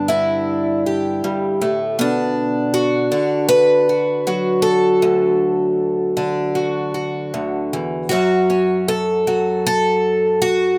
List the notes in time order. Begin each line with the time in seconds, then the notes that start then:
Already playing: G2 B3 D4
0.08 D3 E4
0.86 G4
1.24 G2
1.62 A2
1.99 B2 D4
2.74 F#4
3.12 D3
3.49 B4
3.89 F#4
4.27 F#3 F#4
4.62 A4
5.02 D2
6.17 D3
6.55 F#4
6.94 F#4
7.34 D2
7.73 E2
8.09 F#2 F#3 C#4 F#4
8.50 C#4
8.88 A4
9.27 F#3
9.67 A4
10.42 F#4